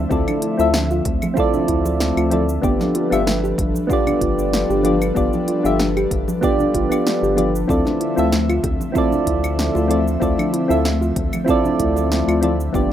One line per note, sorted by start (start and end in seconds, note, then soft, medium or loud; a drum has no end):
0.00 2.59 D3 medium
0.00 12.70 F3 medium
0.00 2.60 A3 medium
0.00 2.60 C4 medium
0.00 2.59 E5 medium
0.09 0.25 D2 loud
0.09 0.55 C4 medium
0.09 0.26 C4 medium
0.09 0.55 E4 medium
0.09 0.55 F4 medium
0.09 0.56 A4 medium
0.09 0.56 D5 medium
0.09 kick loud
0.09 high bongo medium
0.09 shaker medium
0.28 0.36 D4 medium
0.28 high conga medium
0.28 claves medium
0.28 shaker soft
0.42 0.52 E4 medium
0.42 closed hi-hat loud
0.58 1.01 D2 medium
0.58 0.67 C4 medium
0.58 0.68 E4 medium
0.58 0.68 F4 medium
0.58 0.68 A4 medium
0.58 0.69 E5 medium
0.58 shaker medium
0.74 snare loud
0.74 high bongo medium
0.74 high conga medium
0.74 shaker medium
0.91 1.04 F4 loud
0.91 shaker soft
1.05 1.19 D2 medium
1.05 kick loud
1.05 closed hi-hat loud
1.22 high bongo soft
1.22 high conga loud
1.22 claves medium
1.22 shaker medium
1.34 2.27 C4 loud
1.34 1.53 C4 medium
1.34 2.28 E4 medium
1.34 2.28 F4 loud
1.34 kick loud
1.34 shaker medium
1.38 2.29 A4 medium
1.38 2.30 D5 loud
1.54 1.62 D4 medium
1.54 low conga medium
1.54 shaker soft
1.68 2.12 D2 medium
1.68 1.78 E4 medium
1.68 kick medium
1.68 closed hi-hat medium
1.85 high bongo medium
1.85 high conga medium
1.85 shaker medium
2.00 snare loud
2.00 shaker medium
2.17 2.59 D2 medium
2.17 2.30 F4 loud
2.17 claves medium
2.17 shaker soft
2.30 2.42 C4 medium
2.30 2.42 E4 medium
2.30 2.42 F4 medium
2.30 2.43 A4 medium
2.30 2.43 D5 medium
2.30 closed hi-hat medium
2.30 high bongo soft
2.30 high conga loud
2.49 shaker medium
2.61 2.77 G1 loud
2.61 7.65 G3 medium
2.61 3.07 B3 medium
2.61 2.79 B3 medium
2.61 3.07 D4 medium
2.61 7.65 D4 medium
2.61 3.08 F4 medium
2.61 3.08 G4 medium
2.61 7.65 A4 medium
2.61 7.65 B4 medium
2.61 3.09 D5 medium
2.61 kick loud
2.61 shaker medium
2.80 2.88 D4 medium
2.80 snare soft
2.80 high conga loud
2.80 shaker soft
2.95 3.04 F4 medium
2.95 closed hi-hat medium
2.95 high bongo medium
3.10 3.54 G1 medium
3.10 3.20 B3 medium
3.10 3.20 D4 medium
3.10 3.21 F4 medium
3.10 3.21 G4 medium
3.10 3.22 E5 loud
3.10 claves medium
3.10 shaker medium
3.27 snare loud
3.27 high conga medium
3.27 shaker medium
3.44 3.57 G4 loud
3.44 high bongo medium
3.44 shaker soft
3.58 3.72 G1 medium
3.58 kick loud
3.58 closed hi-hat medium
3.74 high conga loud
3.74 shaker medium
3.87 4.80 B3 loud
3.87 4.05 B3 medium
3.87 4.81 D4 medium
3.87 4.81 F4 medium
3.87 kick loud
3.87 shaker medium
3.92 4.82 G4 medium
3.92 4.83 D5 loud
4.07 4.15 D4 medium
4.07 high bongo medium
4.07 low conga medium
4.07 claves medium
4.07 shaker soft
4.21 4.65 G1 medium
4.21 4.31 F4 medium
4.21 kick medium
4.21 closed hi-hat medium
4.38 high conga medium
4.38 shaker medium
4.53 snare loud
4.53 high bongo soft
4.53 shaker medium
4.70 5.12 G1 medium
4.70 4.83 G4 medium
4.70 shaker soft
4.83 4.94 B3 medium
4.83 4.95 D4 medium
4.83 4.95 F4 medium
4.83 4.95 G4 medium
4.83 4.96 D5 medium
4.83 closed hi-hat medium
4.83 high conga loud
5.02 claves medium
5.02 shaker medium
5.15 5.30 G1 medium
5.15 5.60 B3 medium
5.15 5.32 B3 medium
5.15 5.60 D4 medium
5.15 5.61 F4 medium
5.15 5.61 G4 medium
5.15 5.61 D5 medium
5.15 kick loud
5.15 high bongo medium
5.15 shaker medium
5.33 5.41 D4 medium
5.33 high conga loud
5.33 shaker soft
5.48 5.57 F4 medium
5.48 closed hi-hat medium
5.63 6.07 G1 medium
5.63 5.73 B3 medium
5.63 5.73 D4 medium
5.63 5.74 F4 medium
5.63 5.74 G4 medium
5.63 5.74 E5 loud
5.63 high bongo soft
5.63 shaker medium
5.80 snare medium
5.80 high conga medium
5.80 shaker medium
5.97 6.10 G4 loud
5.97 claves medium
5.97 shaker soft
6.11 6.25 G1 medium
6.11 kick loud
6.11 closed hi-hat medium
6.28 high bongo medium
6.28 high conga loud
6.28 shaker medium
6.41 6.87 B3 loud
6.41 6.58 B3 medium
6.41 6.87 D4 medium
6.41 6.88 F4 medium
6.41 6.88 G4 loud
6.41 6.89 D5 loud
6.41 kick loud
6.41 shaker medium
6.59 6.68 D4 medium
6.59 low conga medium
6.59 shaker soft
6.74 6.88 G1 medium
6.74 6.84 F4 medium
6.74 kick medium
6.74 closed hi-hat medium
6.74 high bongo medium
6.89 7.33 B3 medium
6.89 7.33 D4 medium
6.89 7.34 F4 medium
6.89 7.34 G4 medium
6.89 7.34 D5 medium
6.89 high conga medium
6.89 claves medium
6.89 shaker medium
7.07 snare loud
7.07 shaker medium
7.23 7.64 G1 medium
7.23 7.36 G4 loud
7.23 shaker soft
7.35 7.47 B3 medium
7.35 7.47 D4 medium
7.35 7.47 F4 medium
7.35 7.48 G4 medium
7.35 7.48 D5 medium
7.35 closed hi-hat medium
7.35 high bongo medium
7.35 high conga loud
7.55 shaker medium
7.68 7.83 D2 loud
7.68 12.71 D3 medium
7.68 12.70 A3 medium
7.68 8.13 C4 medium
7.68 12.70 C4 medium
7.68 7.84 C4 medium
7.68 8.13 E4 medium
7.68 8.13 F4 medium
7.68 8.14 A4 medium
7.68 8.14 D5 medium
7.68 12.70 E5 medium
7.68 kick loud
7.68 shaker medium
7.85 7.94 D4 medium
7.85 snare soft
7.85 high conga medium
7.85 shaker soft
8.00 8.10 E4 medium
8.00 closed hi-hat medium
8.00 high bongo medium
8.16 8.59 D2 medium
8.16 8.26 C4 medium
8.16 8.26 E4 medium
8.16 8.26 F4 medium
8.16 8.27 A4 medium
8.16 8.27 E5 loud
8.16 shaker medium
8.32 snare medium
8.32 high conga medium
8.32 shaker medium
8.49 8.62 F4 loud
8.49 claves medium
8.49 shaker soft
8.64 8.77 D2 medium
8.64 kick loud
8.64 closed hi-hat medium
8.64 high bongo medium
8.81 high conga medium
8.81 shaker medium
8.92 9.85 C4 loud
8.92 9.11 C4 medium
8.92 9.86 E4 medium
8.92 9.86 F4 medium
8.92 kick loud
8.92 shaker medium
8.97 9.87 A4 medium
8.97 9.88 D5 loud
9.12 9.20 D4 medium
9.12 high bongo soft
9.12 low conga medium
9.12 shaker soft
9.27 9.70 D2 medium
9.27 9.36 E4 medium
9.27 kick medium
9.27 closed hi-hat medium
9.43 high conga medium
9.43 claves medium
9.43 shaker medium
9.59 snare loud
9.59 shaker medium
9.75 10.17 D2 medium
9.75 9.89 F4 loud
9.75 high bongo medium
9.75 shaker soft
9.88 9.99 C4 medium
9.88 10.00 E4 medium
9.88 10.00 F4 medium
9.88 10.00 A4 medium
9.88 10.01 D5 medium
9.88 closed hi-hat medium
9.88 high conga medium
10.08 shaker medium
10.20 10.35 D2 loud
10.20 10.65 C4 medium
10.20 10.37 C4 medium
10.20 10.66 E4 medium
10.20 10.66 F4 medium
10.20 10.66 A4 medium
10.20 10.67 D5 medium
10.20 kick loud
10.20 high bongo soft
10.20 shaker medium
10.38 10.46 D4 medium
10.38 high conga medium
10.38 claves medium
10.38 shaker soft
10.53 10.62 E4 medium
10.53 closed hi-hat medium
10.68 11.12 D2 medium
10.68 10.78 C4 medium
10.68 10.78 E4 medium
10.68 10.79 F4 medium
10.68 10.79 A4 medium
10.68 10.79 E5 loud
10.68 shaker medium
10.84 snare medium
10.84 high bongo medium
10.84 high conga medium
10.84 shaker medium
11.01 11.15 F4 loud
11.01 shaker soft
11.16 11.30 D2 medium
11.16 kick loud
11.16 closed hi-hat medium
11.33 high bongo medium
11.33 high conga medium
11.33 claves medium
11.33 shaker medium
11.45 12.37 C4 loud
11.45 11.63 C4 medium
11.45 12.38 E4 loud
11.45 12.39 F4 medium
11.45 kick loud
11.45 shaker medium
11.49 12.40 A4 loud
11.49 12.40 D5 loud
11.64 11.73 D4 medium
11.64 low conga medium
11.64 shaker soft
11.79 12.23 D2 loud
11.79 11.89 E4 medium
11.79 kick medium
11.79 closed hi-hat medium
11.96 high bongo medium
11.96 high conga medium
11.96 shaker medium
12.12 snare loud
12.12 shaker medium
12.28 12.70 D2 medium
12.28 12.41 F4 loud
12.28 claves medium
12.28 shaker soft
12.41 12.52 C4 medium
12.41 12.53 E4 medium
12.41 12.53 F4 medium
12.41 12.53 A4 medium
12.41 12.54 D5 medium
12.41 closed hi-hat medium
12.41 high bongo soft
12.41 high conga medium
12.60 shaker medium
12.73 12.88 G1 loud
12.73 12.93 F3 medium
12.73 12.93 G3 medium
12.73 12.93 B3 medium
12.73 12.89 B3 medium
12.73 12.93 D4 medium
12.73 12.93 F4 medium
12.73 12.93 G4 medium
12.73 12.93 A4 medium
12.73 12.93 B4 medium
12.73 12.93 D5 medium
12.73 kick loud
12.73 shaker medium